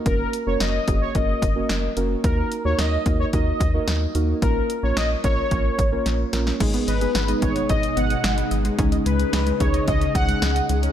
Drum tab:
CC |----------------|----------------|----------------|x---------------|
HH |x-x-x-x-x-x-x-x-|x-x-x-x-x-x-x-x-|x-x-x-x-x-x-x-x-|xxxxxxxxxxxxxxxx|
SD |----o-------o---|----o-------o---|----o-------o-oo|----o-------o---|
BD |o-----o-o-o-----|o-----o-o-o-----|o-----o-o-o-----|o-----o-o-------|

CC |----------------|
HH |xxxxxxxxxxxxxxxx|
SD |----o-------o---|
BD |o-----o-o-o-----|